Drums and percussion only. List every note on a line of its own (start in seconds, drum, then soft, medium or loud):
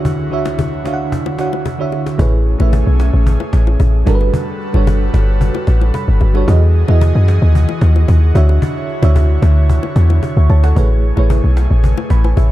0.05 cajon bass loud
0.05 low conga medium
0.19 cajon slap soft
0.32 cajon slap soft
0.45 cajon slap loud
0.45 low bongo medium
0.59 cajon bass loud
0.59 high bongo medium
0.59 low conga medium
0.72 cajon slap soft
0.85 cajon slap medium
0.85 low bongo medium
0.99 cajon slap soft
1.12 cajon bass loud
1.12 low conga medium
1.26 cajon slap soft
1.26 low bongo medium
1.39 cajon slap medium
1.53 cajon slap soft
1.53 low bongo medium
1.66 cajon bass medium
1.66 high bongo medium
1.92 cajon slap soft
1.92 high bongo medium
2.06 cajon slap medium
2.06 high bongo medium
2.19 cajon bass loud
2.19 low conga medium
2.33 cajon slap soft
2.46 cajon slap soft
2.60 low bongo medium
2.73 cajon bass loud
2.73 high bongo medium
2.73 low conga medium
2.87 cajon slap soft
3.00 cajon slap loud
3.00 cajon slap medium
3.00 low bongo medium
3.14 cajon slap soft
3.27 cajon bass loud
3.27 low conga medium
3.40 cajon slap soft
3.40 low bongo medium
3.53 cajon slap loud
3.67 cajon slap soft
3.67 low bongo medium
3.80 cajon bass medium
3.80 high bongo medium
3.94 cajon slap soft
4.07 cajon slap loud
4.07 high bongo medium
4.21 cajon slap soft
4.21 high bongo medium
4.34 cajon bass loud
4.34 low conga medium
4.48 cajon slap soft
4.61 cajon slap soft
4.74 cajon slap soft
4.74 low bongo medium
4.87 cajon bass loud
4.87 high bongo medium
4.87 low conga medium
5.14 cajon slap medium
5.14 low bongo medium
5.28 cajon slap soft
5.41 cajon bass loud
5.41 low conga medium
5.55 low bongo medium
5.67 cajon slap medium
5.81 cajon slap soft
5.81 low bongo medium
5.94 cajon bass medium
5.94 high bongo medium
6.08 cajon slap soft
6.21 cajon slap medium
6.21 high bongo medium
6.35 cajon slap soft
6.35 high bongo medium
6.48 cajon bass loud
6.48 low conga medium
6.62 cajon slap soft
6.75 cajon slap soft
6.88 low bongo medium
7.01 cajon bass loud
7.01 high bongo medium
7.01 low conga medium
7.15 cajon slap soft
7.28 cajon slap loud
7.28 cajon slap medium
7.28 low bongo medium
7.42 cajon slap soft
7.55 cajon bass loud
7.55 low conga medium
7.69 cajon slap soft
7.69 low bongo medium
7.81 cajon slap loud
7.96 cajon slap soft
7.96 low bongo medium
8.08 cajon bass medium
8.08 high bongo medium
8.23 cajon slap soft
8.35 cajon slap loud
8.35 high bongo medium
8.49 cajon slap soft
8.49 high bongo medium
8.62 cajon bass loud
8.62 low conga medium
8.76 cajon slap soft
8.89 cajon slap soft
9.03 cajon slap loud
9.03 low bongo medium
9.16 cajon bass loud
9.16 high bongo medium
9.16 low conga medium
9.30 cajon slap soft
9.42 cajon slap medium
9.42 low bongo medium
9.56 cajon slap soft
9.69 cajon bass loud
9.69 low conga medium
9.83 cajon slap soft
9.83 low bongo medium
9.96 cajon slap loud
10.10 cajon slap soft
10.10 low bongo medium
10.23 cajon bass medium
10.23 high bongo medium
10.37 cajon slap soft
10.49 cajon slap medium
10.49 high bongo medium
10.64 cajon slap medium
10.64 high bongo medium
10.76 cajon bass loud
10.76 low conga medium
10.91 cajon slap soft
11.04 cajon slap soft
11.17 cajon slap soft
11.17 low bongo medium
11.30 cajon bass loud
11.30 high bongo medium
11.30 low conga medium
11.44 cajon slap soft
11.57 cajon slap medium
11.57 low bongo medium
11.71 cajon slap soft
11.84 cajon bass loud
11.84 low conga medium
11.98 cajon slap soft
11.98 low bongo medium
12.10 cajon slap loud
12.24 cajon slap soft
12.24 low bongo medium
12.37 cajon bass medium
12.37 high bongo medium